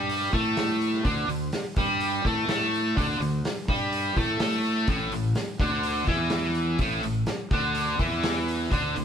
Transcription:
Already playing: fingered electric bass G2, distorted electric guitar G3 G4
0.10 open hi-hat
0.33 fingered electric bass A2, distorted electric guitar A3 A4, kick, open hi-hat
0.57 snare, open hi-hat
0.81 open hi-hat
0.93 snare
1.05 fingered electric bass D2, distorted electric guitar D3 D4, kick, open hi-hat
1.28 fingered electric bass D2, distorted electric guitar D3, open hi-hat
1.52 snare, open hi-hat
1.76 fingered electric bass G2, distorted electric guitar G3 G4, kick, open hi-hat
2.00 open hi-hat
2.24 fingered electric bass A2, distorted electric guitar A3 A4, kick, open hi-hat
2.48 fingered electric bass A2, distorted electric guitar A3 A4, snare, open hi-hat
2.74 open hi-hat
2.96 fingered electric bass D2, distorted electric guitar D3 D4, kick, open hi-hat
3.20 fingered electric bass D2, distorted electric guitar D3, open hi-hat
3.45 snare, open hi-hat
3.68 fingered electric bass G2, distorted electric guitar G3 G4, kick, open hi-hat
3.93 open hi-hat
4.16 fingered electric bass A2, distorted electric guitar A3 A4, kick, open hi-hat
4.40 fingered electric bass A2, distorted electric guitar A3 A4, snare, open hi-hat
4.64 open hi-hat
4.87 fingered electric bass A1, distorted electric guitar A2 A3, kick, open hi-hat
5.12 fingered electric bass A1, distorted electric guitar A2, open hi-hat
5.35 snare, open hi-hat
5.60 fingered electric bass D2, distorted electric guitar D3 D4, kick, open hi-hat
5.83 open hi-hat
6.07 fingered electric bass E2, distorted electric guitar E3 E4, kick, open hi-hat
6.30 snare, open hi-hat
6.55 open hi-hat
6.79 fingered electric bass A1, distorted electric guitar A2 A3, kick, open hi-hat
7.03 fingered electric bass A1, distorted electric guitar A2, open hi-hat
7.26 snare, open hi-hat
7.51 fingered electric bass D2, distorted electric guitar D3 D4, kick, open hi-hat
7.75 open hi-hat
7.99 fingered electric bass E2, distorted electric guitar E3 E4, kick, open hi-hat
8.23 snare, open hi-hat
8.48 open hi-hat
8.71 fingered electric bass D2, distorted electric guitar D3 D4, kick, open hi-hat
8.96 fingered electric bass D2, distorted electric guitar D3, open hi-hat

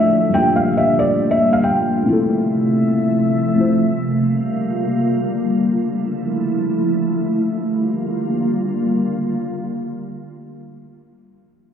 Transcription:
Already playing: ambient pad D3 F3 A3 E5, synth keys A3 D4 E4 F4 A4, felt piano E5
0.29 synth keys G3 A#3
0.34 ambient pad G3 A#3 F4, synth keys D4 F4, felt piano G5
0.40 synth keys G4
0.56 felt piano F5
0.77 felt piano E5
0.99 felt piano D5
1.31 felt piano E5
1.53 felt piano F5
1.64 felt piano G5
2.02 synth keys A3 C4
2.07 ambient pad C3 F3 A3 E5, synth keys E4 F4
2.12 synth keys A4
3.55 synth keys A3 C4 E4 F4
3.60 synth keys C5
3.79 ambient pad D3 G3 A#3 F4
5.52 ambient pad F3 A3 E4
7.25 ambient pad D3 G3 A#3 F4

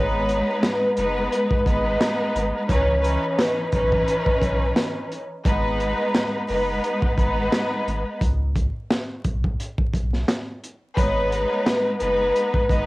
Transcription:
Already playing: sub bass G#1, string section G#3 B3 D#4 B4, vibraphone C#5
0.29 closed hi-hat
0.62 vibraphone B4, snare, clap, closed hi-hat
0.97 sub bass F#1, string section G#3 B3 D#4 B4, vibraphone B4, closed hi-hat
1.32 closed hi-hat
1.51 kick
1.66 sub bass G#1, string section G#3 B3 D#4 B4, vibraphone D#5, kick, closed hi-hat
2.01 snare, clap, closed hi-hat
2.35 sub bass G#1, closed hi-hat
2.68 sub bass C#2, string section E3 C#4 D#4 B4, vibraphone C#5, kick, closed hi-hat
3.01 string section E3 C#4 D#4 B4, closed hi-hat
3.38 vibraphone B4, snare, clap, closed hi-hat
3.72 sub bass B1, string section E3 C#4 D#4 B4, vibraphone B4, kick, closed hi-hat
3.92 kick
4.08 closed hi-hat
4.26 kick
4.41 sub bass B1, vibraphone C#5, kick, closed hi-hat
4.76 snare, clap, closed hi-hat
5.12 closed hi-hat
5.45 sub bass G#1, string section G#3 B3 D#4 B4, kick, closed hi-hat
5.80 closed hi-hat
6.14 snare, clap, closed hi-hat
6.48 sub bass F#1, string section G#3 B3 D#4 B4, open hi-hat
6.84 closed hi-hat
7.02 kick
7.18 sub bass G#1, string section G#3 B3 D#4 B4, kick, closed hi-hat
7.52 snare, clap, closed hi-hat
7.87 sub bass G#1, closed hi-hat
8.21 sub bass C#2, kick, closed hi-hat
8.56 kick, closed hi-hat
8.90 snare, clap, closed hi-hat
9.24 sub bass B1, kick, closed hi-hat
9.44 kick
9.60 closed hi-hat
9.78 kick
9.94 sub bass B1, kick, closed hi-hat
10.13 snare
10.28 snare, clap, closed hi-hat
10.64 closed hi-hat
10.97 sub bass G#1, string section G#3 B3 D#4 B4, vibraphone C#5, kick, closed hi-hat
11.32 closed hi-hat
11.65 vibraphone B4, snare, clap, closed hi-hat
12.00 sub bass F#1, string section G#3 B3 D#4 B4, vibraphone B4, closed hi-hat
12.36 closed hi-hat
12.54 kick
12.69 sub bass G#1, string section G#3 B3 D#4 B4, vibraphone D#5, kick, closed hi-hat

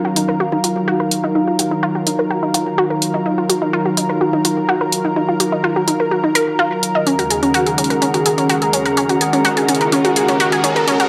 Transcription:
Already playing: analog synth pad D#3 F#3 F4 A#4, ambient pad F#3 C#4 D#4 F5 A#5
0.05 synth arpeggio sound F#4
0.16 synth arpeggio sound D#4, closed hi-hat, low conga
0.29 synth arpeggio sound A#4
0.40 synth arpeggio sound F#4
0.52 synth arpeggio sound D#4, low conga
0.64 synth arpeggio sound F4, closed hi-hat
0.76 low conga
0.88 synth arpeggio sound F#4
1.00 synth arpeggio sound A#4
1.11 closed hi-hat
1.24 synth arpeggio sound D#4
1.35 synth arpeggio sound D#4
1.48 synth arpeggio sound F4
1.59 synth arpeggio sound F#4, closed hi-hat
1.71 synth arpeggio sound D#4
1.83 synth arpeggio sound F4
1.95 synth arpeggio sound F#4
2.07 synth arpeggio sound D#4, closed hi-hat
2.19 synth arpeggio sound A#4
2.31 synth arpeggio sound F#4
2.43 synth arpeggio sound D#4
2.54 synth arpeggio sound F4, closed hi-hat
2.67 low conga
2.78 synth arpeggio sound F#4
2.90 synth arpeggio sound A#4
3.02 closed hi-hat, low conga
3.14 synth arpeggio sound D#4
3.26 synth arpeggio sound D#4
3.38 synth arpeggio sound F4
3.50 synth arpeggio sound F#4, closed hi-hat
3.62 synth arpeggio sound D#4
3.73 synth arpeggio sound F4
3.86 synth arpeggio sound F#4
3.97 synth arpeggio sound D#4, closed hi-hat, low conga
4.09 synth arpeggio sound A#4
4.21 synth arpeggio sound F#4
4.33 synth arpeggio sound D#4, low conga
4.45 synth arpeggio sound F4, closed hi-hat
4.57 low conga
4.69 synth arpeggio sound F#4
4.81 synth arpeggio sound A#4
4.92 closed hi-hat
5.05 synth arpeggio sound D#4
5.16 synth arpeggio sound D#4
5.29 synth arpeggio sound F4
5.40 synth arpeggio sound F#4, closed hi-hat
5.52 synth arpeggio sound D#4
5.64 synth arpeggio sound F4
5.76 synth arpeggio sound F#4
5.88 synth arpeggio sound D#4, closed hi-hat, low conga
6.00 synth arpeggio sound A#4
6.11 synth arpeggio sound F#4
6.24 synth arpeggio sound D#4
6.35 synth arpeggio sound A#4, closed hi-hat
6.47 low conga
6.59 synth arpeggio sound F4
6.83 closed hi-hat, low conga
6.95 synth arpeggio sound D#5
7.07 analog synth pad D#2 C#3 G#3 F#4, ambient pad D#3, synth arpeggio sound C#4, closed hi-hat, riser
7.19 synth arpeggio sound F#4, closed hi-hat
7.30 ambient pad C#4, synth arpeggio sound G#4, closed hi-hat
7.43 synth arpeggio sound C#4, closed hi-hat
7.49 ambient pad A#5
7.54 synth arpeggio sound F#4, ambient pad G#4, closed hi-hat
7.66 synth arpeggio sound G#4, closed hi-hat
7.78 synth arpeggio sound C#4, closed hi-hat, low conga
7.84 ambient pad F#5, closed hi-hat
7.90 synth arpeggio sound A#4, closed hi-hat
8.02 synth arpeggio sound C#4, closed hi-hat
8.14 synth arpeggio sound F#4, closed hi-hat, low conga
8.26 synth arpeggio sound G#4, closed hi-hat
8.38 synth arpeggio sound C#4, closed hi-hat, low conga
8.49 synth arpeggio sound F#4, closed hi-hat
8.62 synth arpeggio sound G#4, closed hi-hat
8.73 synth arpeggio sound C#4, closed hi-hat
8.86 synth arpeggio sound A#4, closed hi-hat
8.97 synth arpeggio sound C#4, closed hi-hat
9.09 synth arpeggio sound F#4, closed hi-hat
9.21 synth arpeggio sound G#4, closed hi-hat
9.33 synth arpeggio sound C#4, closed hi-hat
9.45 synth arpeggio sound F#4, closed hi-hat
9.57 synth arpeggio sound G#4, closed hi-hat
9.68 synth arpeggio sound C#4, closed hi-hat
9.75 closed hi-hat
9.81 synth arpeggio sound A#4, closed hi-hat
9.92 synth arpeggio sound C#4, closed hi-hat
10.05 synth arpeggio sound F#4, closed hi-hat
10.16 synth arpeggio sound G#4, closed hi-hat
10.28 synth arpeggio sound C#4, closed hi-hat, low conga
10.40 synth arpeggio sound F#4, closed hi-hat
10.52 synth arpeggio sound G#4, closed hi-hat
10.64 synth arpeggio sound C#4, closed hi-hat, low conga
10.76 synth arpeggio sound A#4, closed hi-hat
10.88 synth arpeggio sound C#4, closed hi-hat
11.00 synth arpeggio sound F#4, closed hi-hat

